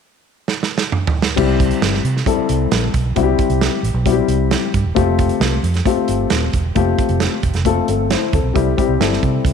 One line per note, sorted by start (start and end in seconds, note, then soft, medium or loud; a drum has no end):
0.48 snare medium
0.63 snare soft
0.78 snare medium
0.92 mid tom medium
1.07 floor tom medium
1.22 snare medium
1.36 1.71 C2 medium
1.36 1.98 G3 medium
1.36 1.98 C4 medium
1.36 1.98 E4 medium
1.36 1.99 G4 medium
1.36 kick medium
1.36 crash medium
1.60 kick medium
1.60 closed hi-hat medium
1.71 closed hi-hat soft
1.82 1.99 G1 medium
1.82 snare medium
1.82 closed hi-hat medium
1.94 snare soft
2.04 2.21 C3 medium
2.04 closed hi-hat medium
2.17 snare soft
2.26 2.87 G3 medium
2.26 2.87 C4 medium
2.26 2.88 E4 medium
2.26 2.88 A4 medium
2.26 kick medium
2.26 closed hi-hat medium
2.38 muted fingered electric bass stroke soft
2.49 2.66 C2 medium
2.49 closed hi-hat medium
2.72 2.89 A#1 medium
2.72 snare loud
2.72 closed hi-hat medium
2.94 3.11 B1 medium
2.94 kick medium
2.94 closed hi-hat medium
3.16 3.33 C2 medium
3.16 3.77 G3 medium
3.16 3.77 C4 medium
3.16 3.77 E4 medium
3.16 3.23 F#4 medium
3.16 kick medium
3.16 closed hi-hat medium
3.23 3.80 G4 medium
3.39 kick medium
3.39 closed hi-hat medium
3.50 3.67 C2 medium
3.50 closed hi-hat soft
3.61 snare medium
3.61 closed hi-hat medium
3.83 3.92 A1 medium
3.83 closed hi-hat medium
3.94 4.20 B1 medium
4.06 4.67 G3 medium
4.06 4.67 C4 medium
4.06 4.67 E4 medium
4.06 4.12 F#4 medium
4.06 kick medium
4.06 closed hi-hat medium
4.12 4.70 G4 medium
4.28 4.54 C2 medium
4.28 closed hi-hat medium
4.51 snare loud
4.51 closed hi-hat medium
4.74 4.83 G2 medium
4.74 kick medium
4.74 closed hi-hat medium
4.84 4.93 E1 medium
4.95 5.30 F1 loud
4.95 5.56 A3 medium
4.95 5.56 C4 medium
4.95 5.57 F4 medium
4.95 5.57 G4 medium
4.95 kick medium
4.95 closed hi-hat medium
5.19 kick medium
5.19 closed hi-hat medium
5.29 closed hi-hat soft
5.40 5.57 C2 medium
5.40 snare loud
5.40 closed hi-hat medium
5.63 5.80 F2 medium
5.63 closed hi-hat medium
5.74 snare soft
5.74 closed hi-hat soft
5.85 6.46 A3 medium
5.85 6.46 C4 medium
5.85 6.47 F4 medium
5.85 6.47 G4 medium
5.85 kick medium
5.85 closed hi-hat medium
5.97 muted fingered electric bass stroke soft
6.08 6.25 G1 medium
6.08 closed hi-hat medium
6.30 6.48 D#1 medium
6.30 snare loud
6.30 closed hi-hat medium
6.53 6.70 E1 medium
6.53 kick medium
6.53 closed hi-hat medium
6.75 6.93 F1 loud
6.75 7.36 A3 medium
6.75 7.37 C4 medium
6.75 7.37 F4 medium
6.75 7.37 G4 medium
6.75 kick medium
6.75 closed hi-hat medium
6.99 kick medium
6.99 closed hi-hat medium
7.09 7.26 F1 medium
7.09 closed hi-hat soft
7.20 snare loud
7.20 closed hi-hat medium
7.43 7.51 E1 medium
7.43 kick medium
7.43 closed hi-hat medium
7.54 7.79 F1 medium
7.54 snare soft
7.54 closed hi-hat soft
7.65 8.26 A3 medium
7.65 7.88 C4 medium
7.65 7.88 F4 medium
7.65 7.88 A4 medium
7.65 kick medium
7.65 closed hi-hat medium
7.88 8.13 G1 medium
7.88 8.10 C4 medium
7.88 8.10 A4 medium
7.88 closed hi-hat medium
8.10 8.33 E4 medium
8.10 8.32 C5 medium
8.10 snare loud
8.10 closed hi-hat medium
8.33 8.41 D2 medium
8.33 8.53 C4 soft
8.33 8.76 A4 medium
8.33 kick medium
8.33 closed hi-hat medium
8.43 8.52 B1 medium
8.54 8.72 C2 medium
8.54 8.70 G3 medium
8.54 8.70 C4 medium
8.54 8.71 E4 medium
8.54 8.71 G4 medium
8.54 kick medium
8.54 closed hi-hat medium
8.77 8.93 G3 medium
8.77 8.93 C4 medium
8.77 8.93 E4 medium
8.77 8.93 G4 medium
8.77 kick medium
8.77 closed hi-hat medium
8.89 8.97 C2 medium
9.00 9.16 G1 medium
9.00 9.53 G3 medium
9.00 9.53 C4 medium
9.00 9.53 E4 medium
9.00 9.53 A4 medium
9.00 snare medium
9.00 closed hi-hat medium
9.13 snare soft
9.23 9.39 C3 medium
9.23 kick medium
9.23 closed hi-hat medium
9.45 9.53 C2 medium
9.45 kick medium
9.45 closed hi-hat medium